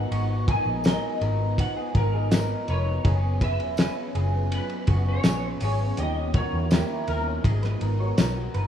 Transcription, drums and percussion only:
0.12 ride medium
0.48 kick loud
0.48 ride medium
0.84 snare loud
0.84 ride medium
0.84 tambourine medium
1.21 ride medium
1.58 kick loud
1.58 ride medium
1.95 kick loud
1.95 ride medium
2.31 snare loud
2.31 ride medium
2.31 tambourine loud
2.68 ride medium
3.05 kick loud
3.05 ride medium
3.41 kick loud
3.41 ride medium
3.60 ride soft
3.77 snare loud
3.77 ride medium
3.77 tambourine medium
4.15 ride medium
4.52 ride medium
4.70 ride soft
4.87 kick loud
4.87 ride medium
5.24 snare loud
5.24 ride medium
5.24 tambourine medium
5.61 open hi-hat medium
5.61 ride medium
5.97 hi-hat pedal medium
5.97 ride medium
6.34 kick loud
6.34 ride medium
6.71 snare loud
6.71 ride medium
6.71 tambourine medium
7.08 ride medium
7.44 kick loud
7.44 ride medium
7.63 snare soft
7.63 ride soft
7.81 ride medium
8.18 snare loud
8.18 ride medium
8.18 tambourine medium
8.54 ride medium

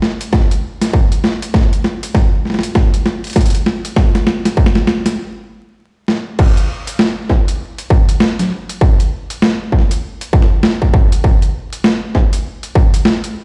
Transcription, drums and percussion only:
0.02 snare medium
0.21 closed hi-hat medium
0.33 kick loud
0.33 snare medium
0.51 closed hi-hat medium
0.81 snare medium
0.81 closed hi-hat medium
0.93 kick medium
1.12 closed hi-hat medium
1.24 snare medium
1.42 closed hi-hat medium
1.54 kick medium
1.54 snare medium
1.73 closed hi-hat soft
1.84 snare medium
2.03 closed hi-hat medium
2.15 kick loud
2.15 snare medium
2.45 snare soft
2.50 snare soft
2.54 snare medium
2.59 snare medium
2.63 closed hi-hat medium
2.75 kick loud
2.75 snare medium
2.94 closed hi-hat medium
3.06 snare medium
3.24 closed hi-hat soft
3.27 closed hi-hat soft
3.30 closed hi-hat soft
3.33 kick loud
3.33 snare medium
3.33 closed hi-hat soft
3.36 closed hi-hat soft
3.41 closed hi-hat soft
3.46 closed hi-hat medium
3.50 closed hi-hat medium
3.55 closed hi-hat medium
3.66 snare medium
3.85 closed hi-hat medium
3.96 kick loud
3.96 snare medium
4.15 snare medium
4.15 closed hi-hat soft
4.27 snare medium
4.45 snare medium
4.45 closed hi-hat medium
4.57 kick loud
4.66 snare loud
4.75 snare medium
4.87 snare loud
5.06 snare medium
5.06 closed hi-hat medium
6.08 snare medium
6.39 kick loud
6.39 crash medium
6.57 closed hi-hat soft
6.87 closed hi-hat medium
6.99 snare loud
7.29 kick medium
7.29 snare soft
7.48 closed hi-hat medium
7.78 closed hi-hat medium
7.90 kick loud
8.09 closed hi-hat medium
8.20 snare loud
8.39 snare soft
8.39 closed hi-hat medium
8.69 closed hi-hat medium
8.81 kick loud
9.00 closed hi-hat soft
9.30 closed hi-hat medium
9.42 snare loud
9.72 kick medium
9.79 snare soft
9.82 snare soft
9.88 snare soft
9.88 closed hi-hat medium
10.21 closed hi-hat medium
10.33 kick loud
10.42 snare medium
10.63 snare loud
10.82 kick medium
10.94 kick loud
11.12 closed hi-hat medium
11.24 kick loud
11.42 closed hi-hat soft
11.73 closed hi-hat medium
11.84 snare loud
12.15 kick medium
12.15 snare soft
12.33 closed hi-hat medium
12.63 closed hi-hat medium
12.75 kick loud
12.94 closed hi-hat medium
13.05 snare loud
13.24 closed hi-hat medium

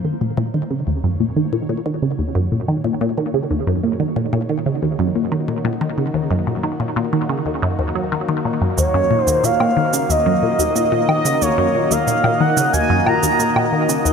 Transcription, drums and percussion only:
8.78 cabasa medium
9.28 cabasa medium
9.44 cabasa medium
9.60 low woodblock medium
9.93 cabasa medium
10.10 cabasa medium
10.59 cabasa medium
10.76 cabasa medium
11.09 low woodblock medium
11.25 cabasa medium
11.42 cabasa soft
11.91 cabasa medium
12.08 cabasa soft
12.24 low woodblock soft
12.57 cabasa medium
12.74 cabasa medium
13.07 low woodblock medium
13.23 cabasa medium
13.40 cabasa medium
13.56 low woodblock medium
13.89 cabasa medium
14.06 cabasa soft

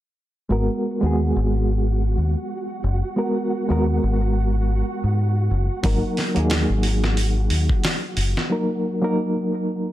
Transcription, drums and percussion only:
5.84 kick loud
5.84 open hi-hat medium
6.17 snare soft
6.17 open hi-hat medium
6.36 closed hi-hat soft
6.50 snare loud
6.50 open hi-hat medium
6.83 open hi-hat medium
7.04 snare soft
7.17 open hi-hat medium
7.50 open hi-hat medium
7.69 kick medium
7.84 snare loud
7.84 open hi-hat medium
8.17 open hi-hat medium
8.37 snare soft

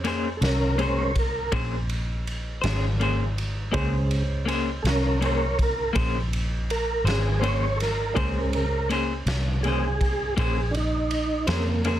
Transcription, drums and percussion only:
0.04 ride medium
0.42 snare loud
0.42 ride medium
0.79 ride medium
1.15 kick medium
1.15 ride medium
1.52 kick loud
1.52 ride medium
1.89 ride medium
2.27 ride medium
2.63 snare loud
2.63 ride medium
3.01 ride medium
3.38 ride medium
3.74 kick loud
3.74 ride medium
4.11 ride medium
4.48 ride medium
4.85 snare medium
4.85 ride medium
5.22 ride medium
5.59 kick medium
5.59 ride medium
5.96 kick loud
5.96 ride medium
6.33 ride medium
6.70 ride medium
7.07 snare loud
7.07 ride medium
7.43 ride medium
7.80 snare soft
7.80 ride medium
8.16 kick loud
8.16 ride medium
8.53 ride medium
8.90 ride medium
9.27 snare loud
9.27 ride medium
9.64 ride medium
10.01 kick medium
10.01 ride medium
10.38 kick loud
10.38 ride medium
10.74 ride medium
11.11 ride medium
11.47 snare loud
11.47 ride medium
11.85 ride medium

